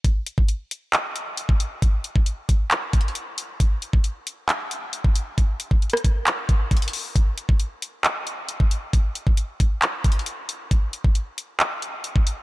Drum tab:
HH |x-----------x-----------x-----------x-----------x-----------x-----------x-----------x-----------|x-----------x-----------x-----------x-----------x-----------x---x---x---x-----------x-----------|x-----------x-----------x-----------x-----------x-----------x-----------x-----------x-----------|x-----------x-----------x---x---x---x-----------x-----------x-----------x--x--x--x--o-----------|
CP |------------------------------------------------x-----------------------------------------------|------------------------------------------------x-----------------------------------------------|------------------------------------------------x-----------------------------------------------|------------------------------------------------x-----------------------------------------------|
SD |------------------------------------------------------------------------------------------------|------------------------------------------------------------------------------------------------|------------------------------------------------------------------------------------------------|------------------------------r-----------------------------------------------------------------|
BD |o-----------------o-----------------------------------------------------------o-----------------|o-----------------o-----------------o-----------------------o-----------------------------------|o-----------------o-----------------------------------------------------------o-----------------|o-----------------o-----------------o-----------------------o-----------o-----------------------|

HH |x-----------x-----------x-----------x-----------x-----------x-----------x-----------x-----------|x-----------x-----------x-----------x-----------x-----------x---x---x---x-----------x-----------|x-----------x-----------x-----------x-----------x-----------x-----------x-----------x-----------|
CP |------------------------------------------------x-----------------------------------------------|------------------------------------------------x-----------------------------------------------|------------------------------------------------x-----------------------------------------------|
SD |------------------------------------------------------------------------------------------------|------------------------------------------------------------------------------------------------|------------------------------------------------------------------------------------------------|
BD |o-----------------o-----------------------------------------------------------o-----------------|o-----------------o-----------------o-----------------------o-----------------------------------|o-----------------o-----------------------------------------------------------o-----------------|